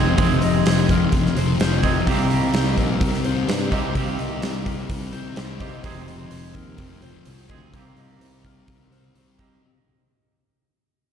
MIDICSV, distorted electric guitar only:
0, 0, Header, 1, 2, 480
1, 0, Start_track
1, 0, Key_signature, -3, "minor"
1, 0, Tempo, 472813
1, 180, Time_signature, 4, 2, 24, 8
1, 11294, End_track
2, 0, Start_track
2, 0, Title_t, "Distorted electric guitar"
2, 0, Program_c, 0, 30
2, 0, Note_on_c, 0, 41, 68
2, 0, Note_on_c, 0, 48, 58
2, 0, Note_on_c, 0, 53, 74
2, 0, Note_on_c, 0, 60, 74
2, 174, Note_off_c, 0, 41, 0
2, 186, Note_on_c, 0, 41, 89
2, 187, Note_off_c, 0, 48, 0
2, 199, Note_off_c, 0, 53, 0
2, 199, Note_on_c, 0, 48, 85
2, 211, Note_on_c, 0, 53, 96
2, 406, Note_off_c, 0, 53, 0
2, 418, Note_on_c, 0, 53, 70
2, 428, Note_off_c, 0, 48, 0
2, 440, Note_on_c, 0, 48, 55
2, 645, Note_off_c, 0, 41, 0
2, 657, Note_on_c, 0, 41, 74
2, 658, Note_off_c, 0, 48, 0
2, 669, Note_off_c, 0, 53, 0
2, 670, Note_on_c, 0, 48, 71
2, 681, Note_on_c, 0, 53, 84
2, 889, Note_off_c, 0, 53, 0
2, 901, Note_on_c, 0, 53, 71
2, 910, Note_off_c, 0, 48, 0
2, 922, Note_on_c, 0, 48, 54
2, 1124, Note_off_c, 0, 41, 0
2, 1136, Note_off_c, 0, 48, 0
2, 1136, Note_on_c, 0, 41, 83
2, 1148, Note_on_c, 0, 48, 96
2, 1149, Note_off_c, 0, 53, 0
2, 1161, Note_on_c, 0, 53, 85
2, 1366, Note_off_c, 0, 53, 0
2, 1378, Note_on_c, 0, 53, 65
2, 1389, Note_off_c, 0, 48, 0
2, 1401, Note_on_c, 0, 48, 47
2, 1585, Note_off_c, 0, 60, 0
2, 1605, Note_off_c, 0, 41, 0
2, 1617, Note_on_c, 0, 41, 68
2, 1620, Note_off_c, 0, 48, 0
2, 1632, Note_off_c, 0, 53, 0
2, 1632, Note_on_c, 0, 48, 68
2, 1644, Note_on_c, 0, 53, 81
2, 1851, Note_off_c, 0, 53, 0
2, 1863, Note_on_c, 0, 53, 67
2, 1873, Note_off_c, 0, 48, 0
2, 1886, Note_on_c, 0, 48, 56
2, 2082, Note_off_c, 0, 41, 0
2, 2085, Note_off_c, 0, 48, 0
2, 2085, Note_off_c, 0, 53, 0
2, 2098, Note_on_c, 0, 48, 80
2, 2116, Note_on_c, 0, 55, 87
2, 2126, Note_on_c, 0, 60, 102
2, 2336, Note_off_c, 0, 60, 0
2, 2341, Note_on_c, 0, 60, 70
2, 2364, Note_off_c, 0, 55, 0
2, 2368, Note_on_c, 0, 55, 56
2, 2575, Note_off_c, 0, 48, 0
2, 2579, Note_on_c, 0, 48, 78
2, 2593, Note_off_c, 0, 55, 0
2, 2597, Note_on_c, 0, 55, 74
2, 2605, Note_off_c, 0, 60, 0
2, 2609, Note_on_c, 0, 60, 83
2, 2812, Note_off_c, 0, 60, 0
2, 2816, Note_on_c, 0, 60, 71
2, 2837, Note_off_c, 0, 55, 0
2, 2841, Note_on_c, 0, 55, 58
2, 3049, Note_off_c, 0, 48, 0
2, 3053, Note_on_c, 0, 48, 91
2, 3057, Note_off_c, 0, 55, 0
2, 3069, Note_on_c, 0, 55, 96
2, 3072, Note_off_c, 0, 60, 0
2, 3076, Note_on_c, 0, 60, 91
2, 3294, Note_off_c, 0, 60, 0
2, 3298, Note_on_c, 0, 60, 65
2, 3309, Note_off_c, 0, 55, 0
2, 3321, Note_on_c, 0, 55, 51
2, 3517, Note_off_c, 0, 48, 0
2, 3529, Note_on_c, 0, 48, 69
2, 3534, Note_off_c, 0, 55, 0
2, 3546, Note_on_c, 0, 55, 80
2, 3553, Note_off_c, 0, 60, 0
2, 3557, Note_on_c, 0, 60, 75
2, 3764, Note_off_c, 0, 60, 0
2, 3768, Note_on_c, 0, 60, 69
2, 3786, Note_off_c, 0, 55, 0
2, 3799, Note_on_c, 0, 55, 58
2, 3992, Note_off_c, 0, 48, 0
2, 4004, Note_on_c, 0, 48, 82
2, 4005, Note_off_c, 0, 55, 0
2, 4018, Note_on_c, 0, 55, 83
2, 4026, Note_off_c, 0, 60, 0
2, 4031, Note_on_c, 0, 60, 91
2, 4252, Note_off_c, 0, 60, 0
2, 4256, Note_on_c, 0, 60, 71
2, 4267, Note_off_c, 0, 55, 0
2, 4279, Note_on_c, 0, 55, 59
2, 4474, Note_off_c, 0, 48, 0
2, 4486, Note_on_c, 0, 48, 75
2, 4491, Note_off_c, 0, 55, 0
2, 4503, Note_on_c, 0, 55, 72
2, 4506, Note_off_c, 0, 60, 0
2, 4510, Note_on_c, 0, 60, 71
2, 4734, Note_off_c, 0, 60, 0
2, 4738, Note_on_c, 0, 60, 74
2, 4749, Note_off_c, 0, 55, 0
2, 4762, Note_on_c, 0, 55, 57
2, 4958, Note_off_c, 0, 48, 0
2, 4970, Note_on_c, 0, 48, 90
2, 4974, Note_off_c, 0, 55, 0
2, 4986, Note_on_c, 0, 55, 88
2, 4988, Note_off_c, 0, 60, 0
2, 4993, Note_on_c, 0, 60, 100
2, 5204, Note_off_c, 0, 60, 0
2, 5208, Note_on_c, 0, 60, 62
2, 5221, Note_off_c, 0, 55, 0
2, 5233, Note_on_c, 0, 55, 49
2, 5442, Note_off_c, 0, 48, 0
2, 5454, Note_on_c, 0, 48, 70
2, 5455, Note_off_c, 0, 55, 0
2, 5468, Note_on_c, 0, 55, 78
2, 5476, Note_off_c, 0, 60, 0
2, 5480, Note_on_c, 0, 60, 84
2, 5684, Note_off_c, 0, 60, 0
2, 5688, Note_on_c, 0, 60, 71
2, 5699, Note_off_c, 0, 55, 0
2, 5712, Note_on_c, 0, 55, 57
2, 5919, Note_off_c, 0, 48, 0
2, 5927, Note_off_c, 0, 55, 0
2, 5934, Note_on_c, 0, 41, 87
2, 5950, Note_on_c, 0, 48, 87
2, 5961, Note_on_c, 0, 53, 93
2, 6159, Note_off_c, 0, 53, 0
2, 6171, Note_on_c, 0, 53, 66
2, 6186, Note_off_c, 0, 48, 0
2, 6198, Note_on_c, 0, 48, 53
2, 6398, Note_off_c, 0, 41, 0
2, 6411, Note_off_c, 0, 48, 0
2, 6411, Note_on_c, 0, 41, 68
2, 6421, Note_off_c, 0, 53, 0
2, 6423, Note_on_c, 0, 48, 71
2, 6433, Note_on_c, 0, 53, 76
2, 6635, Note_off_c, 0, 53, 0
2, 6648, Note_on_c, 0, 53, 63
2, 6658, Note_off_c, 0, 48, 0
2, 6671, Note_on_c, 0, 48, 59
2, 6878, Note_off_c, 0, 41, 0
2, 6890, Note_off_c, 0, 48, 0
2, 6891, Note_on_c, 0, 41, 83
2, 6902, Note_on_c, 0, 48, 83
2, 6904, Note_off_c, 0, 53, 0
2, 6916, Note_on_c, 0, 53, 85
2, 7118, Note_off_c, 0, 53, 0
2, 7131, Note_on_c, 0, 53, 62
2, 7138, Note_off_c, 0, 48, 0
2, 7150, Note_on_c, 0, 48, 49
2, 7358, Note_off_c, 0, 41, 0
2, 7371, Note_on_c, 0, 41, 69
2, 7376, Note_off_c, 0, 48, 0
2, 7385, Note_off_c, 0, 53, 0
2, 7388, Note_on_c, 0, 48, 73
2, 7397, Note_on_c, 0, 53, 76
2, 7601, Note_off_c, 0, 53, 0
2, 7613, Note_on_c, 0, 53, 70
2, 7624, Note_off_c, 0, 48, 0
2, 7636, Note_on_c, 0, 48, 54
2, 7837, Note_off_c, 0, 48, 0
2, 7838, Note_off_c, 0, 41, 0
2, 7839, Note_off_c, 0, 53, 0
2, 7849, Note_on_c, 0, 48, 86
2, 7863, Note_on_c, 0, 55, 89
2, 7870, Note_off_c, 0, 60, 0
2, 7874, Note_on_c, 0, 60, 97
2, 8077, Note_off_c, 0, 60, 0
2, 8089, Note_on_c, 0, 60, 72
2, 8107, Note_off_c, 0, 55, 0
2, 8119, Note_on_c, 0, 55, 51
2, 8312, Note_off_c, 0, 48, 0
2, 8323, Note_off_c, 0, 55, 0
2, 8325, Note_on_c, 0, 48, 71
2, 8336, Note_off_c, 0, 60, 0
2, 8336, Note_on_c, 0, 55, 78
2, 8348, Note_on_c, 0, 60, 78
2, 8558, Note_off_c, 0, 60, 0
2, 8570, Note_on_c, 0, 60, 71
2, 8582, Note_off_c, 0, 55, 0
2, 8594, Note_on_c, 0, 55, 59
2, 8798, Note_off_c, 0, 48, 0
2, 8810, Note_on_c, 0, 48, 87
2, 8813, Note_off_c, 0, 55, 0
2, 8822, Note_off_c, 0, 60, 0
2, 8825, Note_on_c, 0, 55, 88
2, 8834, Note_on_c, 0, 60, 94
2, 9037, Note_off_c, 0, 60, 0
2, 9049, Note_on_c, 0, 60, 57
2, 9063, Note_off_c, 0, 55, 0
2, 9075, Note_on_c, 0, 55, 51
2, 9282, Note_off_c, 0, 48, 0
2, 9294, Note_on_c, 0, 48, 73
2, 9297, Note_off_c, 0, 55, 0
2, 9306, Note_off_c, 0, 60, 0
2, 9309, Note_on_c, 0, 55, 63
2, 9318, Note_on_c, 0, 60, 74
2, 9519, Note_off_c, 0, 60, 0
2, 9531, Note_on_c, 0, 60, 62
2, 9547, Note_off_c, 0, 55, 0
2, 9560, Note_on_c, 0, 55, 51
2, 9760, Note_off_c, 0, 60, 0
2, 9762, Note_off_c, 0, 48, 0
2, 9774, Note_off_c, 0, 55, 0
2, 11294, End_track
0, 0, End_of_file